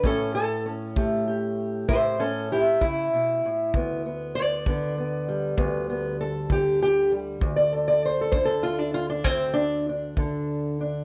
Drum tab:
BD |o--o--o--o--|o--o--o--o--|o--o--o--o--|